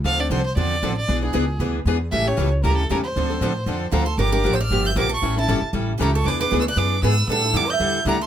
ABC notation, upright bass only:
X:1
M:4/4
L:1/8
Q:"Swing" 1/4=232
K:Dm
V:1 name="Upright bass" clef=bass
D,,2 C,,2 E,,2 A,,,2 | =B,,,2 ^C,,2 D,,2 E,,2 | A,,,2 ^C,,2 D,,2 E,,2 | D,,2 A,,2 F,,2 D,,2 |
G,,,2 A,,,2 G,,,2 B,,,2 | A,,,2 G,,, z A,,,2 ^C,,2 | E,,2 D,,2 ^F,,2 ^G,,2 | A,,2 F,,2 E,,2 D,,2 |]